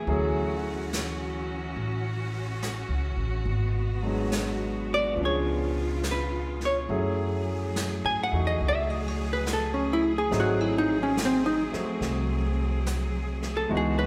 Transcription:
Already playing: E3 A3 B3 G#4
0.07 D2 F#3 A3 C#4 E4 F#4 G#4, brush sweep
0.93 snare, hi-hat pedal
1.76 A1, brush sweep
2.62 snare, hi-hat pedal
2.89 C#2
3.17 A1
3.45 G#1 B2 B3, brush sweep
4.02 F#3 G#3 B3 D4
4.07 G#4
4.32 snare, hi-hat pedal
4.94 D5
5.13 C#2 F3 B3
5.17 C#3 C#4 F4, brush sweep
5.21 D4 G#4
5.25 C#5
6.03 snare, hi-hat pedal
6.11 B4
6.61 snare
6.65 C#5
6.88 F#2 F#3 A3 C#4 E4 G#4, brush sweep
7.76 snare, hi-hat pedal
8.05 G#2 G#5
8.23 F#5
8.31 E2 A3 D#4 F#4
8.47 D#5
8.61 C#2, brush sweep
8.68 E5
8.90 D#5
9.08 C#5
9.33 B4
9.46 snare, hi-hat pedal
9.53 A4
9.74 C#4
9.93 E4
10.18 G#4
10.29 G#1 F#3 A3 C4 D#4 G#4, brush sweep, snare
10.40 F#4
10.61 E4
10.78 D#4
11.03 C#4
11.17 snare, hi-hat pedal
11.25 C4
11.46 D#4
11.72 A3 C4 F#4, muted upright bass stroke, snare
12.01 C2, brush sweep, snare
12.86 snare, hi-hat pedal
13.43 snare
13.57 A4
13.69 C#2 E3 G#3 B3 D#4 F#4, brush sweep
13.77 G#4
13.99 B4

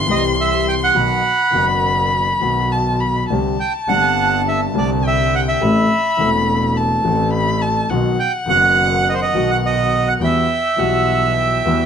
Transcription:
Already playing: C6
0.06 C2 C3 E3 G3 C4
0.10 G4 D#5
0.40 E5
0.68 G5
0.84 F#5
0.95 B1 B2 D#3 F#3 B3 F#4 B5
1.51 F#1 F#2 D#3 F#3 B3 F#4
2.40 B1 B2 D#3 F#3 B3
2.44 F#4
2.72 A5
3.00 B5
3.30 C2 C3 D3 G3 C4 G4 A5
3.60 G5
3.88 G1 G2 D3 G3 C4 G4 F#5
4.48 E5
4.73 C2 C3 D3 G3 C4
4.78 G4 D5
5.04 E5 G5
5.35 F#5
5.48 E5
5.61 A1 A2 E3 A3 C4 A4 B5
6.17 E1 E2 E3 A3 C4 A4
6.77 A5
7.03 A1 A2 E3 A3 C4
7.07 A4
7.34 B5
7.62 A5
7.90 B1 B2 D#3 F#3 B3 F#4 F#5
8.19 G5
8.46 F#1 F#2 D#3 F#3 B3 F#5
8.50 F#4
9.09 D#5
9.14 C5
9.22 D#5
9.32 B1 B2 D#3 F#3 B3
9.37 F#4
9.51 F#5
9.66 D#5
10.08 F#5
10.20 E2 E3 G3 B3 F#4 G5
10.24 E5
10.76 B1 B2 E3 G3 B3 F#5
10.80 F#4
11.37 G5
11.65 E2 E3 G3 B3 F#4

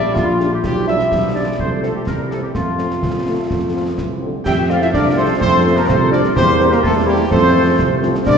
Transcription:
Already playing: G3 D5
0.15 A#1 F4, concert bass drum, snare
0.40 G3 D4, snare
0.52 G4
0.63 B1 F3 G3 G4, concert bass drum, snare, crash
0.87 F3 G3 D4 E5, snare
1.00 snare
1.11 B1, concert bass drum, snare
1.35 F3 G3 D4 D5
1.59 C2 F3 A3 C5, concert bass drum
1.82 F3 A3 C4 A4, snare
1.94 G4
2.06 C2 E3 G3 A#4, concert bass drum, snare
2.30 E3 G3 C4 A4, snare
2.43 G4
2.54 F2 F3 A3 F4, concert bass drum, snare
2.79 F3 A3 C4, snare
2.91 snare
3.03 C2 C3, concert bass drum, snare
3.26 F3 A3 C4
3.51 F2, concert bass drum, snare
3.73 F3 A3 C4
3.98 C2 E3, concert bass drum, snare
4.21 D3 F3 A3 C4
4.45 F2 F3 A3 G4 E5 G5, concert bass drum, snare, crash
4.69 F3 A3 C4 F4 D5 F5, snare
4.81 E4 C5 E5, snare
4.92 C2 D4 A#4 D5, concert bass drum, snare
5.16 F3 A3 C4 A4 C5
5.39 F2 C4 A4 C5, concert bass drum, snare
5.65 F3 A3 C4
5.76 A#3 G4 A#4
5.87 C2 C4 A4 C5, concert bass drum, snare
6.11 F3 A3 C4 D4 A#4 D5, snare
6.24 snare
6.34 E2 G3 A#3 C4 G4 C5, concert bass drum, snare
6.60 G3 A#3 C4, snare
6.71 A#3 G4 A#4, snare
6.82 E2 A3 F4 A4, concert bass drum, snare
7.06 G3 A#3 C4 E4 G4
7.29 F2 F3 A3 C4 A4 C5, concert bass drum, snare
7.55 F3 A3 C4
7.79 C2, concert bass drum, snare
8.02 F3 A3 C4, snare
8.15 snare
8.26 C2 E3 G3 D4 A#4 D5, concert bass drum, snare, crash

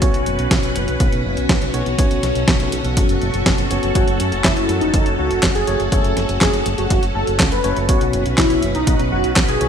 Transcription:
Already playing: C#4 F#4
0.02 B1 B2 B3 C#4 F#4 B4 C#5, kick, closed hi-hat
0.14 B1, closed hi-hat
0.26 F#1, closed hi-hat
0.39 B1, closed hi-hat
0.51 B1, kick, snare, closed hi-hat
0.63 B1, closed hi-hat
0.76 F#1, closed hi-hat
0.88 B1, closed hi-hat
1.00 B1, kick, closed hi-hat
1.12 B1, closed hi-hat
1.25 F#1
1.37 B1, closed hi-hat
1.49 B1, kick, snare, closed hi-hat
1.62 B1, closed hi-hat
1.74 B1 B2 B3 C#4 F#4 C#5, closed hi-hat
1.86 B1, closed hi-hat
1.99 B1 B2 B3 C#4 F#4 A4 C#5, kick, closed hi-hat
2.11 B1, closed hi-hat
2.23 B1, snare, closed hi-hat
2.35 B1, closed hi-hat
2.48 B1, kick, snare, closed hi-hat
2.60 B1, closed hi-hat
2.72 B1, closed hi-hat
2.85 B1, closed hi-hat
2.97 F#1, kick, closed hi-hat
3.09 F#1, closed hi-hat
3.21 F#1, closed hi-hat
3.34 F#1, closed hi-hat
3.46 F#1, kick, snare, closed hi-hat
3.58 F#1, closed hi-hat
3.71 F#1 B3 C#4 F#4 C#5, closed hi-hat
3.83 F#1, closed hi-hat
3.95 F#1 A3 C#4 F#4 C#5, kick, closed hi-hat
4.08 F#1, closed hi-hat
4.20 F#2, closed hi-hat
4.32 F#1, closed hi-hat
4.44 F#1 E4, kick, snare, clap, closed hi-hat
4.57 F#1, closed hi-hat
4.69 F#2, closed hi-hat
4.81 F#1 D#4, closed hi-hat
4.94 F#1, kick, closed hi-hat
5.06 F#1, closed hi-hat
5.18 C#2 F#4
5.31 F#1, closed hi-hat
5.43 F#1, kick, snare, clap, closed hi-hat
5.55 F#1 G#4, closed hi-hat
5.67 F#1 A3 C#4 F#4 C#5, closed hi-hat
5.80 F#1, closed hi-hat
5.92 F#1 A3 C#4 F#4 A4 C#5, kick, closed hi-hat
6.04 F#1, closed hi-hat
6.17 F#1, snare, closed hi-hat
6.29 F#1, closed hi-hat
6.41 F#1 G#4, kick, snare, clap, closed hi-hat
6.54 F#1, closed hi-hat
6.66 F#1, closed hi-hat
6.78 F#1 F#4, closed hi-hat
6.90 F#1, kick, closed hi-hat
7.03 F#1, closed hi-hat
7.15 F#1 A4
7.27 F#1, closed hi-hat
7.40 C#2, kick, snare, clap, closed hi-hat
7.52 F#1 B4, closed hi-hat
7.64 F#1 A3 C#4 F#4 C#5, closed hi-hat
7.77 F#1, closed hi-hat
7.89 B1 B2 B3 C#4 F#4 B4 C#5, kick, closed hi-hat
8.01 B1, closed hi-hat
8.13 F#1, closed hi-hat
8.26 B1, closed hi-hat
8.38 B1 E4, kick, snare, clap, closed hi-hat
8.50 B1, closed hi-hat
8.63 F#1, closed hi-hat
8.75 B1 D#4, closed hi-hat
8.87 B1, kick, closed hi-hat
8.99 B1, closed hi-hat
9.12 F#1 F#4
9.24 B1, closed hi-hat
9.36 B1, kick, snare, clap, closed hi-hat
9.49 B1 G#4, closed hi-hat
9.61 B1 E3 B3 C#4 F#4 C#5, closed hi-hat

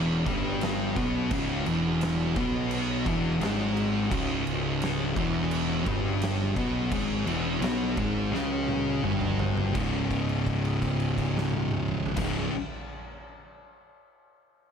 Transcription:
Already playing: E1 E2 E3 C#4 F#4 D#5
0.26 G1 G2 G3, kick, crash
0.61 snare, crash
0.96 B1 B2 B3, kick, crash
1.31 C#1 C#2 C#3, kick, crash
1.66 E1 E2 E3, crash
2.01 snare, crash
2.36 B1 B2 B3, kick, crash
2.71 crash
3.06 E1 E2 E3, kick, crash
3.40 G#1 G#2 G#3, snare, crash
3.77 crash
4.10 C#1 C#2 C#3, kick, crash
4.47 crash
4.82 snare, crash
5.15 E1 E2 E3, kick, crash
5.51 crash
5.86 G1 G2 G3, kick, crash
6.22 snare, crash
6.55 B1 B2 B3, kick, crash
6.91 G#1 G#2 G#3, kick, crash
7.25 E1 E2 E3, crash
7.61 B1 B2 B3, snare, crash
7.97 G#1 G#2 G#3, kick, crash
8.32 C#2 C#3 C#4, snare
8.68 high tom
9.03 G1 G2 G3, mid tom
9.21 mid tom
9.39 floor tom
9.57 floor tom
9.74 C#1 C#2 G#2 C#4 G#4 D#5, kick, crash
9.78 C#3
10.11 kick, crash
10.29 crash
10.47 kick, crash
10.65 crash
10.82 kick, crash
11.00 crash
11.18 kick, crash
11.38 snare
11.53 high tom
11.71 mid tom
11.88 mid tom
12.06 floor tom
12.16 C#1 C#2 G#2, kick, snare, crash
12.21 C#3

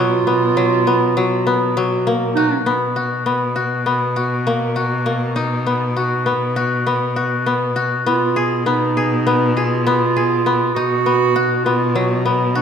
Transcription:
Already playing: B2 F#3 B3 F4 F#4
0.27 B3
0.57 F#3
0.87 B3
1.17 F#3
1.47 B3
1.77 F#3
2.07 A#3
2.35 D#4 F#4
2.66 B2 B3
2.96 F#4
3.26 B3
3.56 F#4
3.86 B3
4.16 F#4
4.47 A#3
4.76 F#4
5.06 A#3
5.36 D#4
5.66 B3
5.96 F#4
6.26 B3
6.56 F#4
6.87 B3
7.16 F#4
7.46 B3
7.76 F#4
8.06 B2 B3 F4
8.36 G#4
8.66 B3 D#4
8.97 G#4
9.27 B3
9.56 F4 G#4
9.87 B3
10.16 G#4
10.46 B3
10.74 B2 D#4 F#4
11.06 B3
11.36 F#4
11.64 B3 F4
11.95 F#3
12.26 B3
12.55 D#4 F#4

